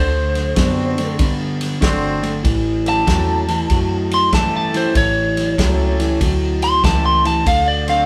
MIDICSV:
0, 0, Header, 1, 6, 480
1, 0, Start_track
1, 0, Tempo, 626305
1, 1876, Time_signature, 4, 2, 24, 8
1, 6176, End_track
2, 0, Start_track
2, 0, Title_t, "Lead electric guitar"
2, 0, Program_c, 0, 29
2, 0, Note_on_c, 0, 72, 102
2, 891, Note_off_c, 0, 72, 0
2, 2215, Note_on_c, 0, 81, 105
2, 3137, Note_off_c, 0, 81, 0
2, 3174, Note_on_c, 0, 84, 85
2, 3321, Note_off_c, 0, 84, 0
2, 3329, Note_on_c, 0, 81, 93
2, 3478, Note_off_c, 0, 81, 0
2, 3499, Note_on_c, 0, 81, 83
2, 3643, Note_off_c, 0, 81, 0
2, 3655, Note_on_c, 0, 72, 93
2, 3801, Note_off_c, 0, 72, 0
2, 3808, Note_on_c, 0, 73, 104
2, 4734, Note_off_c, 0, 73, 0
2, 5089, Note_on_c, 0, 84, 106
2, 5239, Note_off_c, 0, 84, 0
2, 5249, Note_on_c, 0, 81, 96
2, 5399, Note_off_c, 0, 81, 0
2, 5408, Note_on_c, 0, 84, 96
2, 5558, Note_off_c, 0, 84, 0
2, 5569, Note_on_c, 0, 81, 86
2, 5719, Note_off_c, 0, 81, 0
2, 5728, Note_on_c, 0, 77, 102
2, 5878, Note_off_c, 0, 77, 0
2, 5884, Note_on_c, 0, 74, 94
2, 6036, Note_off_c, 0, 74, 0
2, 6050, Note_on_c, 0, 77, 95
2, 6176, Note_off_c, 0, 77, 0
2, 6176, End_track
3, 0, Start_track
3, 0, Title_t, "Horn section"
3, 0, Program_c, 1, 61
3, 0, Note_on_c, 1, 60, 82
3, 0, Note_on_c, 1, 62, 83
3, 0, Note_on_c, 1, 66, 72
3, 0, Note_on_c, 1, 72, 89
3, 79, Note_off_c, 1, 62, 0
3, 81, Note_off_c, 1, 66, 0
3, 83, Note_off_c, 1, 60, 0
3, 83, Note_off_c, 1, 72, 0
3, 423, Note_on_c, 1, 62, 72
3, 428, Note_on_c, 1, 66, 74
3, 431, Note_on_c, 1, 60, 75
3, 431, Note_on_c, 1, 72, 81
3, 1036, Note_off_c, 1, 62, 0
3, 1038, Note_off_c, 1, 66, 0
3, 1040, Note_off_c, 1, 60, 0
3, 1040, Note_off_c, 1, 72, 0
3, 1386, Note_on_c, 1, 62, 88
3, 1390, Note_on_c, 1, 66, 83
3, 1395, Note_on_c, 1, 60, 93
3, 1395, Note_on_c, 1, 72, 101
3, 1838, Note_off_c, 1, 62, 0
3, 1840, Note_off_c, 1, 66, 0
3, 1843, Note_off_c, 1, 60, 0
3, 1843, Note_off_c, 1, 72, 0
3, 2182, Note_on_c, 1, 61, 81
3, 2186, Note_on_c, 1, 67, 75
3, 2193, Note_on_c, 1, 57, 73
3, 2193, Note_on_c, 1, 69, 79
3, 2733, Note_off_c, 1, 61, 0
3, 2735, Note_off_c, 1, 67, 0
3, 2738, Note_off_c, 1, 57, 0
3, 2738, Note_off_c, 1, 69, 0
3, 3311, Note_on_c, 1, 61, 78
3, 3315, Note_on_c, 1, 67, 72
3, 3321, Note_on_c, 1, 57, 80
3, 3321, Note_on_c, 1, 69, 86
3, 3920, Note_off_c, 1, 61, 0
3, 3922, Note_off_c, 1, 67, 0
3, 3925, Note_off_c, 1, 57, 0
3, 3925, Note_off_c, 1, 69, 0
3, 4272, Note_on_c, 1, 61, 77
3, 4276, Note_on_c, 1, 67, 73
3, 4281, Note_on_c, 1, 57, 74
3, 4281, Note_on_c, 1, 69, 80
3, 4881, Note_off_c, 1, 61, 0
3, 4883, Note_off_c, 1, 67, 0
3, 4885, Note_off_c, 1, 57, 0
3, 4885, Note_off_c, 1, 69, 0
3, 5231, Note_on_c, 1, 61, 84
3, 5236, Note_on_c, 1, 67, 69
3, 5241, Note_on_c, 1, 57, 81
3, 5241, Note_on_c, 1, 69, 88
3, 5682, Note_off_c, 1, 61, 0
3, 5684, Note_off_c, 1, 67, 0
3, 5687, Note_off_c, 1, 57, 0
3, 5687, Note_off_c, 1, 69, 0
3, 6029, Note_on_c, 1, 62, 77
3, 6034, Note_on_c, 1, 66, 70
3, 6039, Note_on_c, 1, 60, 80
3, 6039, Note_on_c, 1, 72, 87
3, 6176, Note_off_c, 1, 60, 0
3, 6176, Note_off_c, 1, 62, 0
3, 6176, Note_off_c, 1, 66, 0
3, 6176, Note_off_c, 1, 72, 0
3, 6176, End_track
4, 0, Start_track
4, 0, Title_t, "Clean electric guitar"
4, 0, Program_c, 2, 27
4, 0, Note_on_c, 2, 50, 80
4, 0, Note_on_c, 2, 57, 91
4, 404, Note_off_c, 2, 50, 0
4, 405, Note_off_c, 2, 57, 0
4, 431, Note_on_c, 2, 50, 90
4, 436, Note_on_c, 2, 59, 100
4, 718, Note_off_c, 2, 50, 0
4, 720, Note_off_c, 2, 59, 0
4, 754, Note_on_c, 2, 50, 66
4, 756, Note_on_c, 2, 57, 80
4, 901, Note_off_c, 2, 50, 0
4, 902, Note_off_c, 2, 57, 0
4, 913, Note_on_c, 2, 50, 94
4, 917, Note_on_c, 2, 59, 90
4, 1362, Note_off_c, 2, 50, 0
4, 1364, Note_off_c, 2, 59, 0
4, 1388, Note_on_c, 2, 50, 85
4, 1391, Note_on_c, 2, 57, 88
4, 1676, Note_off_c, 2, 50, 0
4, 1677, Note_off_c, 2, 57, 0
4, 1702, Note_on_c, 2, 50, 67
4, 1707, Note_on_c, 2, 57, 78
4, 1855, Note_off_c, 2, 50, 0
4, 1858, Note_off_c, 2, 57, 0
4, 1865, Note_on_c, 2, 45, 76
4, 1874, Note_on_c, 2, 52, 88
4, 2318, Note_off_c, 2, 45, 0
4, 2322, Note_off_c, 2, 52, 0
4, 2351, Note_on_c, 2, 45, 83
4, 2353, Note_on_c, 2, 54, 95
4, 2637, Note_off_c, 2, 45, 0
4, 2639, Note_off_c, 2, 54, 0
4, 2673, Note_on_c, 2, 45, 74
4, 2677, Note_on_c, 2, 52, 85
4, 2821, Note_off_c, 2, 45, 0
4, 2822, Note_off_c, 2, 52, 0
4, 2836, Note_on_c, 2, 45, 91
4, 2841, Note_on_c, 2, 54, 93
4, 3284, Note_off_c, 2, 45, 0
4, 3286, Note_off_c, 2, 54, 0
4, 3315, Note_on_c, 2, 45, 81
4, 3323, Note_on_c, 2, 52, 84
4, 3600, Note_off_c, 2, 45, 0
4, 3604, Note_off_c, 2, 52, 0
4, 3631, Note_on_c, 2, 45, 70
4, 3636, Note_on_c, 2, 52, 74
4, 3780, Note_off_c, 2, 45, 0
4, 3782, Note_off_c, 2, 52, 0
4, 3797, Note_on_c, 2, 45, 83
4, 3803, Note_on_c, 2, 52, 85
4, 4244, Note_off_c, 2, 45, 0
4, 4247, Note_off_c, 2, 52, 0
4, 4282, Note_on_c, 2, 45, 80
4, 4285, Note_on_c, 2, 54, 99
4, 4563, Note_off_c, 2, 45, 0
4, 4565, Note_off_c, 2, 54, 0
4, 4594, Note_on_c, 2, 45, 78
4, 4597, Note_on_c, 2, 52, 86
4, 4742, Note_off_c, 2, 45, 0
4, 4743, Note_off_c, 2, 52, 0
4, 4763, Note_on_c, 2, 45, 82
4, 4765, Note_on_c, 2, 54, 105
4, 5207, Note_off_c, 2, 45, 0
4, 5209, Note_off_c, 2, 54, 0
4, 5243, Note_on_c, 2, 45, 88
4, 5246, Note_on_c, 2, 52, 102
4, 5524, Note_off_c, 2, 45, 0
4, 5526, Note_off_c, 2, 52, 0
4, 5555, Note_on_c, 2, 45, 80
4, 5557, Note_on_c, 2, 52, 83
4, 5702, Note_off_c, 2, 45, 0
4, 5703, Note_off_c, 2, 52, 0
4, 5716, Note_on_c, 2, 50, 84
4, 5720, Note_on_c, 2, 57, 95
4, 6164, Note_off_c, 2, 50, 0
4, 6166, Note_off_c, 2, 57, 0
4, 6176, End_track
5, 0, Start_track
5, 0, Title_t, "Fingered electric bass"
5, 0, Program_c, 3, 33
5, 0, Note_on_c, 3, 38, 98
5, 406, Note_off_c, 3, 38, 0
5, 435, Note_on_c, 3, 42, 83
5, 885, Note_off_c, 3, 42, 0
5, 918, Note_on_c, 3, 43, 89
5, 1367, Note_off_c, 3, 43, 0
5, 1398, Note_on_c, 3, 31, 83
5, 1846, Note_off_c, 3, 31, 0
5, 1878, Note_on_c, 3, 33, 98
5, 2327, Note_off_c, 3, 33, 0
5, 2355, Note_on_c, 3, 40, 85
5, 2805, Note_off_c, 3, 40, 0
5, 2832, Note_on_c, 3, 42, 81
5, 3284, Note_off_c, 3, 42, 0
5, 3315, Note_on_c, 3, 43, 78
5, 3765, Note_off_c, 3, 43, 0
5, 3798, Note_on_c, 3, 33, 93
5, 4247, Note_off_c, 3, 33, 0
5, 4278, Note_on_c, 3, 37, 90
5, 4727, Note_off_c, 3, 37, 0
5, 4758, Note_on_c, 3, 38, 91
5, 5207, Note_off_c, 3, 38, 0
5, 5241, Note_on_c, 3, 37, 87
5, 5689, Note_off_c, 3, 37, 0
5, 5721, Note_on_c, 3, 38, 88
5, 6169, Note_off_c, 3, 38, 0
5, 6176, End_track
6, 0, Start_track
6, 0, Title_t, "Drums"
6, 270, Note_on_c, 9, 51, 59
6, 274, Note_on_c, 9, 38, 35
6, 346, Note_off_c, 9, 51, 0
6, 351, Note_off_c, 9, 38, 0
6, 430, Note_on_c, 9, 51, 87
6, 435, Note_on_c, 9, 36, 85
6, 435, Note_on_c, 9, 38, 102
6, 507, Note_off_c, 9, 51, 0
6, 512, Note_off_c, 9, 36, 0
6, 512, Note_off_c, 9, 38, 0
6, 750, Note_on_c, 9, 51, 66
6, 754, Note_on_c, 9, 38, 39
6, 826, Note_off_c, 9, 51, 0
6, 831, Note_off_c, 9, 38, 0
6, 911, Note_on_c, 9, 51, 89
6, 915, Note_on_c, 9, 36, 84
6, 916, Note_on_c, 9, 38, 34
6, 988, Note_off_c, 9, 51, 0
6, 992, Note_off_c, 9, 36, 0
6, 993, Note_off_c, 9, 38, 0
6, 1232, Note_on_c, 9, 51, 70
6, 1237, Note_on_c, 9, 38, 36
6, 1309, Note_off_c, 9, 51, 0
6, 1313, Note_off_c, 9, 38, 0
6, 1394, Note_on_c, 9, 51, 78
6, 1395, Note_on_c, 9, 36, 81
6, 1399, Note_on_c, 9, 38, 105
6, 1471, Note_off_c, 9, 36, 0
6, 1471, Note_off_c, 9, 51, 0
6, 1476, Note_off_c, 9, 38, 0
6, 1712, Note_on_c, 9, 51, 56
6, 1717, Note_on_c, 9, 38, 32
6, 1789, Note_off_c, 9, 51, 0
6, 1793, Note_off_c, 9, 38, 0
6, 1875, Note_on_c, 9, 36, 83
6, 1875, Note_on_c, 9, 51, 79
6, 1880, Note_on_c, 9, 38, 35
6, 1952, Note_off_c, 9, 36, 0
6, 1952, Note_off_c, 9, 51, 0
6, 1956, Note_off_c, 9, 38, 0
6, 2193, Note_on_c, 9, 51, 59
6, 2198, Note_on_c, 9, 38, 37
6, 2270, Note_off_c, 9, 51, 0
6, 2274, Note_off_c, 9, 38, 0
6, 2355, Note_on_c, 9, 36, 79
6, 2356, Note_on_c, 9, 51, 80
6, 2360, Note_on_c, 9, 38, 107
6, 2432, Note_off_c, 9, 36, 0
6, 2432, Note_off_c, 9, 51, 0
6, 2437, Note_off_c, 9, 38, 0
6, 2670, Note_on_c, 9, 51, 64
6, 2675, Note_on_c, 9, 38, 36
6, 2747, Note_off_c, 9, 51, 0
6, 2751, Note_off_c, 9, 38, 0
6, 2833, Note_on_c, 9, 51, 78
6, 2835, Note_on_c, 9, 36, 84
6, 2838, Note_on_c, 9, 38, 35
6, 2910, Note_off_c, 9, 51, 0
6, 2911, Note_off_c, 9, 36, 0
6, 2914, Note_off_c, 9, 38, 0
6, 3153, Note_on_c, 9, 51, 65
6, 3157, Note_on_c, 9, 38, 37
6, 3230, Note_off_c, 9, 51, 0
6, 3234, Note_off_c, 9, 38, 0
6, 3315, Note_on_c, 9, 51, 80
6, 3316, Note_on_c, 9, 36, 81
6, 3320, Note_on_c, 9, 38, 110
6, 3392, Note_off_c, 9, 51, 0
6, 3393, Note_off_c, 9, 36, 0
6, 3396, Note_off_c, 9, 38, 0
6, 3633, Note_on_c, 9, 51, 61
6, 3638, Note_on_c, 9, 38, 34
6, 3710, Note_off_c, 9, 51, 0
6, 3715, Note_off_c, 9, 38, 0
6, 3795, Note_on_c, 9, 51, 83
6, 3796, Note_on_c, 9, 36, 84
6, 3800, Note_on_c, 9, 38, 34
6, 3872, Note_off_c, 9, 51, 0
6, 3873, Note_off_c, 9, 36, 0
6, 3876, Note_off_c, 9, 38, 0
6, 4116, Note_on_c, 9, 51, 62
6, 4120, Note_on_c, 9, 38, 33
6, 4193, Note_off_c, 9, 51, 0
6, 4197, Note_off_c, 9, 38, 0
6, 4279, Note_on_c, 9, 36, 87
6, 4282, Note_on_c, 9, 51, 89
6, 4287, Note_on_c, 9, 38, 112
6, 4356, Note_off_c, 9, 36, 0
6, 4359, Note_off_c, 9, 51, 0
6, 4363, Note_off_c, 9, 38, 0
6, 4595, Note_on_c, 9, 51, 65
6, 4600, Note_on_c, 9, 38, 34
6, 4672, Note_off_c, 9, 51, 0
6, 4677, Note_off_c, 9, 38, 0
6, 4758, Note_on_c, 9, 36, 82
6, 4758, Note_on_c, 9, 51, 86
6, 4763, Note_on_c, 9, 38, 33
6, 4835, Note_off_c, 9, 36, 0
6, 4835, Note_off_c, 9, 51, 0
6, 4840, Note_off_c, 9, 38, 0
6, 5075, Note_on_c, 9, 51, 72
6, 5079, Note_on_c, 9, 38, 36
6, 5152, Note_off_c, 9, 51, 0
6, 5156, Note_off_c, 9, 38, 0
6, 5240, Note_on_c, 9, 36, 91
6, 5243, Note_on_c, 9, 51, 87
6, 5248, Note_on_c, 9, 38, 108
6, 5317, Note_off_c, 9, 36, 0
6, 5320, Note_off_c, 9, 51, 0
6, 5324, Note_off_c, 9, 38, 0
6, 5558, Note_on_c, 9, 51, 67
6, 5563, Note_on_c, 9, 38, 32
6, 5635, Note_off_c, 9, 51, 0
6, 5639, Note_off_c, 9, 38, 0
6, 5720, Note_on_c, 9, 36, 88
6, 5720, Note_on_c, 9, 51, 89
6, 5725, Note_on_c, 9, 38, 35
6, 5797, Note_off_c, 9, 36, 0
6, 5797, Note_off_c, 9, 51, 0
6, 5802, Note_off_c, 9, 38, 0
6, 6037, Note_on_c, 9, 51, 64
6, 6041, Note_on_c, 9, 38, 35
6, 6113, Note_off_c, 9, 51, 0
6, 6118, Note_off_c, 9, 38, 0
6, 6176, End_track
0, 0, End_of_file